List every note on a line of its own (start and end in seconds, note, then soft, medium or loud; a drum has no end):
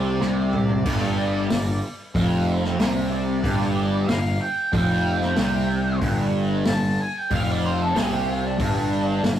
0.00 0.17 C2 medium
0.00 0.19 C3 loud
0.00 1.79 D5 medium
0.20 0.82 C2 loud
0.20 0.84 C3 loud
0.20 snare medium
0.53 mid tom medium
0.69 floor tom medium
0.85 1.46 G1 medium
0.85 1.48 G2 loud
0.85 kick loud
0.85 open hi-hat medium
0.85 crash medium
1.03 snare soft
1.49 1.81 G1 medium
1.49 1.75 G2 medium
1.49 snare loud
1.49 open hi-hat medium
2.15 2.75 F1 medium
2.15 2.78 F2 loud
2.15 kick loud
2.15 open hi-hat medium
2.64 snare soft
2.79 3.40 C2 loud
2.79 3.42 C3 medium
2.79 snare loud
2.79 open hi-hat medium
3.12 4.08 D5 medium
3.43 4.04 G1 medium
3.43 4.07 G2 loud
3.43 kick medium
3.43 open hi-hat medium
3.61 snare soft
4.08 4.38 G1 medium
4.08 4.34 G2 medium
4.08 4.39 F5 medium
4.08 snare loud
4.08 open hi-hat medium
4.41 4.72 G5 medium
4.72 5.33 F1 medium
4.72 5.36 F2 loud
4.72 5.98 G5 medium
4.72 kick loud
4.72 open hi-hat soft
5.21 snare soft
5.36 5.98 C2 medium
5.36 6.00 C3 loud
5.36 snare loud
5.36 open hi-hat soft
6.01 6.62 G1 medium
6.01 6.64 G2 medium
6.01 kick loud
6.01 open hi-hat medium
6.65 6.97 G1 medium
6.65 6.91 G2 medium
6.65 6.98 A5 medium
6.65 snare loud
6.65 open hi-hat medium
7.01 7.18 G#5 medium
7.18 7.32 G5 medium
7.30 7.91 F1 medium
7.30 7.94 F2 loud
7.30 7.48 F5 medium
7.30 kick loud
7.30 open hi-hat medium
7.51 7.65 D5 medium
7.65 7.82 C5 medium
7.82 7.96 A4 medium
7.94 8.56 C2 loud
7.94 8.58 C3 loud
7.94 8.12 G#4 medium
7.94 snare loud
7.94 open hi-hat medium
8.13 8.28 G4 medium
8.28 8.45 F4 medium
8.45 8.60 D4 medium
8.58 9.20 G1 medium
8.58 9.23 G2 loud
8.58 9.23 D4 loud
8.58 kick loud
8.58 open hi-hat medium
9.24 9.40 G1 medium
9.24 9.40 G2 medium
9.24 snare loud
9.24 open hi-hat medium